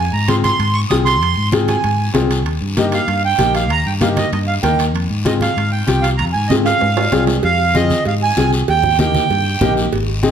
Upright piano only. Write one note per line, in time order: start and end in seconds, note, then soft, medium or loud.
0.28 0.50 C4 medium
0.28 0.50 F4 medium
0.28 0.50 G#4 medium
0.91 1.12 C4 medium
0.91 1.13 F4 medium
0.91 1.13 G#4 medium
1.53 1.74 C4 medium
1.53 1.74 F4 medium
1.53 1.75 G#4 medium
2.14 2.36 C4 medium
2.14 2.36 F4 medium
2.14 2.36 G#4 medium
2.77 2.99 A#3 medium
2.77 2.99 D#4 medium
2.77 2.99 G4 medium
3.38 3.61 A#3 medium
3.38 3.61 D#4 medium
3.38 3.61 G4 medium
4.01 4.23 A#3 medium
4.01 4.23 D#4 medium
4.01 4.23 G4 medium
4.63 4.85 A#3 medium
4.63 4.85 D#4 medium
4.63 4.86 A#4 medium
5.25 5.47 C4 medium
5.25 5.47 F4 medium
5.25 5.48 G#4 medium
5.87 6.09 C4 medium
5.87 6.10 F4 medium
5.87 6.10 G4 medium
6.51 6.72 C4 medium
6.51 6.72 F4 medium
6.51 6.73 G#4 medium
7.12 7.34 C4 medium
7.12 7.34 F4 medium
7.12 7.35 G#4 medium
7.75 7.97 C4 medium
7.75 7.97 F4 medium
7.75 7.97 G#4 medium
8.37 8.59 C4 medium
8.37 8.59 F4 medium
8.37 8.59 G#4 medium
8.99 9.21 A#3 medium
8.99 9.21 D#4 medium
8.99 9.21 G4 medium
9.61 9.83 A#3 medium
9.61 9.83 D#4 medium
9.61 9.83 G4 medium
10.23 10.31 C4 medium
10.23 10.31 D#4 medium
10.23 10.31 G#4 loud